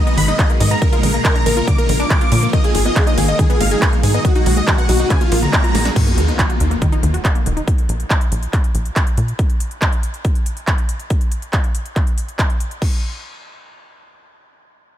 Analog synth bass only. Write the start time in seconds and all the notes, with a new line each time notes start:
0.18 G#1
0.61 G#2
1.03 A#1
1.46 A#1
1.89 A#1
2.32 A#2
2.75 G#1
3.18 G#1
3.61 G#1
4.03 G#2
4.46 B1
4.89 B1
5.32 A#1
5.75 A#1
6.18 D#2
6.61 D#2
7.03 D#2
7.46 D#1
7.89 A#1
8.32 A#1
8.75 A#1
9.18 A#2